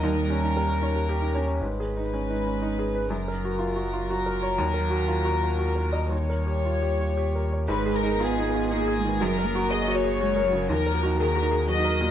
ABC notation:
X:1
M:3/4
L:1/16
Q:1/4=120
K:Ebm
V:1 name="Violin section"
B8- B2 z2 | c12 | B12- | B12 |
d8- d2 z2 | c2 B2 A4 A4 | B4 e2 d6 | B4 B4 e4 |]
V:2 name="Synth pluck"
E z =G E G d E G B E d d | z12 | z12 | z12 |
z12 | A z c A c e A e z A e c | G z B G B d G d z G d B | E z G E G B E B z E B G |]
V:3 name="Upright piano"
E,,2 D2 B2 d2 =G2 D2 | (3A,,2 A2 E2 (3D2 E2 D2 (3E2 A2 c2 | (3G,,2 B2 G2 (3F2 G2 F2 (3G2 B2 d2 | (3E,,2 B2 G2 (3F2 G2 F2 (3G2 B2 e2 |
(3E,,2 B2 =G2 (3F2 G2 F2 (3G2 B2 d2 | (3A,,2 A2 E2 (3F2 E2 F2 (3E2 A2 E,2 | (3G,,2 B2 G2 (3A2 G2 A2 (3G2 B2 D,2 | (3E,,2 B2 G2 (3A2 G2 A2 (3G2 B2 B,,2 |]
V:4 name="Cello" clef=bass
=G,8- G,2 z2 | A,12 | G,12- | G,12 |
=G,8- G,2 z2 | A,4 C2 C2 B,2 A,2 | G,2 B,6 A,2 G,2 | F,4 E,4 G,4 |]
V:5 name="Sub bass" clef=bass
E,,12 | A,,,12 | G,,,12 | E,,12- |
E,,12 | A,,,12 | G,,,12 | E,,12 |]